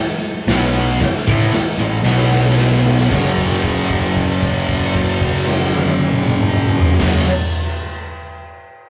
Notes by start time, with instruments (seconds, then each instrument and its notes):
0.47 picked electric bass B1, distorted electric guitar B2 F#3 B3, snare, crash
1.01 muted picked electric bass stroke, muted distorted electric guitar stroke, kick, snare, crash
1.27 picked electric bass A1, distorted electric guitar A2 E3 A3, kick
1.53 muted distorted electric guitar stroke, muted picked electric bass stroke, snare, crash
1.78 picked electric bass A1, distorted electric guitar A2 E3
2.04 picked electric bass B1, distorted electric guitar B2 F#3 B3, snare
2.19 snare
2.32 snare
2.46 snare
2.58 snare
2.71 snare
2.85 snare
2.98 snare
3.08 picked electric bass F#1, distorted electric guitar F#2 C#3 F#3, kick, crash
3.38 kick, crash
3.51 crash
3.64 kick, crash
3.78 crash
3.90 kick, crash
4.03 crash
4.16 kick, crash
4.30 crash
4.42 kick, crash
4.56 crash
4.69 kick, crash
4.82 crash
4.95 kick, crash
5.08 crash
5.21 kick, crash
5.34 crash
5.47 snare
5.60 snare
5.73 high tom
5.86 high tom
5.99 high tom
6.13 mid tom
6.27 mid tom
6.40 mid tom
6.52 mid tom
6.65 mid tom
6.78 floor tom
6.92 floor tom
6.99 picked electric bass F#1, distorted electric guitar F#2 C#3 F#3, kick, snare, crash